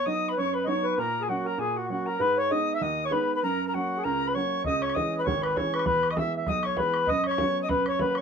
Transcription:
0.06 upright piano F#3 B3 D#4, accordion D#5, tin whistle D#6
0.29 accordion B4, tin whistle B5
0.38 upright piano F#2, accordion C#5, tin whistle C#6
0.54 accordion B4, tin whistle B5
0.65 upright piano F#3 B3 D#4, accordion C#5 D#5, tin whistle C#6
0.84 accordion B4
0.98 upright piano A#2, accordion A#4, tin whistle A#5
1.21 accordion G#4, tin whistle G#5
1.28 upright piano F#3 A#3 C#4, accordion F#4, tin whistle F#5
1.46 accordion A#4, tin whistle A#5
1.58 upright piano A#2, accordion G#4, tin whistle G#5
1.76 accordion F#4, tin whistle F#5
1.89 upright piano F#3 A#3 C#4, accordion F#4, tin whistle F#5
2.06 accordion A#4, tin whistle A#5
2.20 upright piano G#2, accordion B4, tin whistle B5
2.38 accordion C#5, tin whistle C#6
2.51 upright piano G#3 B3 D#4, accordion D#5, tin whistle D#6
2.74 accordion E5, tin whistle E6
2.81 upright piano D#2, accordion D#5, tin whistle D#6
3.05 accordion C#5, tin whistle C#6
3.11 upright piano G#3 B3 D#4, accordion B4, tin whistle B5
3.35 accordion B4, tin whistle B5
3.43 upright piano F#2, accordion A#4, tin whistle A#5
3.68 accordion A#4, tin whistle A#5
3.74 upright piano F#3 A#3 C#4, accordion F#4, tin whistle F#5
3.97 accordion G#4
4.04 upright piano C#2, accordion A#4, tin whistle A#5
4.27 accordion B4, tin whistle B5
4.34 upright piano F#3 A#3 C#4, accordion C#5, tin whistle C#6
4.64 upright piano C#2, accordion D#5, tin whistle D#6, bodhran
4.82 accordion C#5, tin whistle C#6, bodhran
4.89 bodhran
4.95 upright piano E3 G#3 C#4, accordion D#5, tin whistle D#6, bodhran
5.18 accordion B4, tin whistle B5
5.25 upright piano G#1, accordion C#5, tin whistle C#6, bodhran
5.42 accordion B4, tin whistle B5, bodhran
5.56 upright piano E3 G#3 C#4, accordion C#5, tin whistle C#6, bodhran
5.74 accordion B4, bodhran
5.79 bodhran
5.86 upright piano E2, accordion B4, tin whistle B5, bodhran
6.03 bodhran
6.10 accordion D#5, tin whistle D#6, bodhran
6.16 upright piano E3 G#3 B3, accordion E5, tin whistle E6, bodhran
6.37 accordion E5
6.47 upright piano B1, accordion D#5, tin whistle D#6, bodhran
6.63 accordion C#5, tin whistle C#6, bodhran
6.77 upright piano E3 G#3 B3, accordion B4, tin whistle B5, bodhran
6.94 bodhran
7.07 upright piano F#2, accordion D#5, tin whistle D#6, bodhran
7.24 accordion C#5, tin whistle C#6, bodhran
7.31 bodhran
7.38 upright piano F#3 B3 C#4, bodhran
7.62 accordion D#5, tin whistle D#6
7.69 upright piano F#2, accordion B4, tin whistle B5, bodhran
7.86 accordion C#5, tin whistle C#6, bodhran
7.99 upright piano F#3 A#3 C#4, accordion B4, tin whistle B5, bodhran
8.15 tin whistle C#6, bodhran

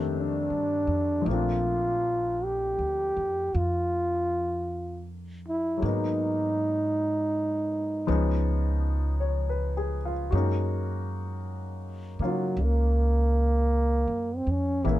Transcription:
Already playing: upright bass F2, grand piano D#3 G3 A3 C4 D4
0.14 trombone D4
0.50 upright bass G2
0.87 upright bass F2
1.22 grand piano F3 A3
1.26 upright bass A#1, grand piano A#3, trombone F4
1.30 grand piano C4 D4
2.44 trombone G4
2.79 upright bass D2
3.17 upright bass F2
3.55 upright bass F2, trombone F4
5.48 trombone E4
5.77 grand piano F#3 G#3
5.82 upright bass G#2, grand piano A#3 B3, trombone D#4
5.88 grand piano D#4
8.07 upright bass C#2, grand piano F3 G#3 B3 C#4 D#4
9.20 grand piano C#5
9.49 grand piano B4
9.77 grand piano G#4
10.05 grand piano F4
10.31 upright bass F#2, grand piano G#3 A#3 C#4 F#4
10.35 grand piano D#4
12.19 upright bass C#3, grand piano A#3 C#4 D#4 F4
12.24 trombone F#3
12.57 upright bass C#2
12.64 trombone A#3
14.08 upright bass F#2
14.36 trombone C4
14.47 upright bass F2, trombone C#4
14.84 upright bass A#1, grand piano E3 G#3 A#3 C#4 E4
14.91 trombone A#3

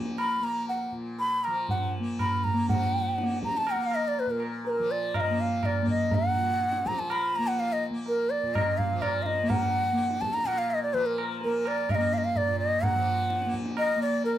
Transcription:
Already playing: tanpura A#2 F3 A#3
0.06 tabla te
0.18 bansuri B5, tabla na
0.40 tanpura A#3, bansuri A#5
0.68 bansuri F#5, tabla tin
0.91 tanpura A#2
1.19 bansuri B5, tabla tin
1.44 tanpura F3, bansuri A#5, tabla na
1.69 bansuri F#5, tabla tin, tabla ge
2.00 tanpura A#3
2.19 bansuri B5, tabla na, tabla ge
2.44 bansuri A#5, tabla ge
2.54 tanpura A#3
2.69 tanpura F3, bansuri F#5, tabla tin, tabla ge
3.18 tabla te
3.22 tanpura A#3
3.31 tabla te
3.43 bansuri A#5, tabla ke
3.55 bansuri A5, tabla te
3.67 bansuri F#5, tabla na
3.76 tanpura A#3
3.83 bansuri F5
3.91 bansuri D#5, tabla na
4.08 bansuri D5
4.15 tabla tin
4.20 bansuri B4
4.26 tanpura A#2
4.31 bansuri A#4
4.40 tabla na
4.65 bansuri B4, tabla tin
4.70 bansuri A#4
4.79 tanpura F3
4.91 bansuri D5
5.14 bansuri F5, tabla na, tabla ge
5.20 bansuri D#5
5.30 tanpura A#3
5.38 bansuri F5, tabla te
5.63 bansuri D5, tabla na, tabla ge
5.82 tanpura A#3
5.87 bansuri D#5, tabla ge
6.11 bansuri F#5, tabla tin, tabla ge
6.35 tanpura A#2
6.61 tabla te
6.73 tabla te
6.85 tanpura F3, bansuri A#5, tabla ke
6.97 bansuri A5, tabla te
7.10 bansuri B5, tabla na
7.36 tanpura A#3, bansuri A#5
7.47 bansuri F#5
7.58 bansuri F5, tabla tin
7.73 bansuri D#5
7.90 tanpura A#3
8.06 bansuri A#4, tabla tin
8.30 bansuri D5
8.43 tanpura A#2
8.54 bansuri D#5, tabla na, tabla ge
8.78 bansuri F5, tabla ge
8.92 tanpura F3
9.02 bansuri D5, tabla na, tabla ge
9.23 bansuri D#5 F5, tabla te
9.43 tanpura A#3
9.50 bansuri F#5, tabla tin, tabla ge
9.93 tanpura A#3
9.99 tabla te
10.11 tabla te
10.21 bansuri A5, tabla ke
10.34 bansuri A#5, tabla te
10.44 tanpura A#2, bansuri F#5, tabla na
10.58 bansuri F5
10.71 bansuri D#5
10.83 bansuri D5
10.94 tanpura F3, bansuri B4, tabla tin
11.06 bansuri A#4
11.18 tabla na
11.41 tanpura A#3, bansuri A#4, tabla tin
11.65 bansuri D5, tabla na
11.89 bansuri F5, tabla na, tabla ge
11.95 tanpura A#3, bansuri D#5
12.13 bansuri F5, tabla te
12.18 bansuri D#5
12.24 bansuri F5
12.35 bansuri D5, tabla tin, tabla ge
12.47 tanpura A#2
12.60 bansuri D#5
12.83 bansuri F#5, tabla tin, tabla ge
12.95 tanpura F3
13.30 tabla te
13.42 tanpura A#3, tabla te
13.54 tabla ke
13.66 tabla te
13.77 bansuri D#5, tabla na
13.96 tanpura A#3
14.02 bansuri D5
14.24 bansuri A#4, tabla tin

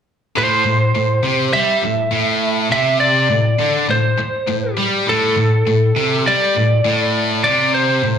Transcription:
0.36 distorted electric guitar A2, lead electric guitar C5
0.66 distorted electric guitar A2
0.95 distorted electric guitar A2
1.24 distorted electric guitar C3
1.53 distorted electric guitar G3, lead electric guitar E5
1.82 distorted electric guitar A2
2.11 distorted electric guitar A2
2.71 distorted electric guitar C3, lead electric guitar E5
3.00 lead electric guitar D5
3.30 distorted electric guitar A2
3.59 distorted electric guitar D3
3.89 distorted electric guitar A2, lead electric guitar C5
4.18 muted distorted electric guitar stroke, muted overdriven electric guitar stroke
4.48 distorted electric guitar A2
4.77 distorted electric guitar G3
5.07 distorted electric guitar A2, lead electric guitar A4
5.37 distorted electric guitar A2
5.67 distorted electric guitar A2
5.97 distorted electric guitar C3
6.26 distorted electric guitar G3, lead electric guitar D5
6.55 distorted electric guitar A2
6.85 distorted electric guitar A2
7.44 distorted electric guitar C3, lead electric guitar D5
7.74 lead electric guitar C5
8.04 distorted electric guitar A2

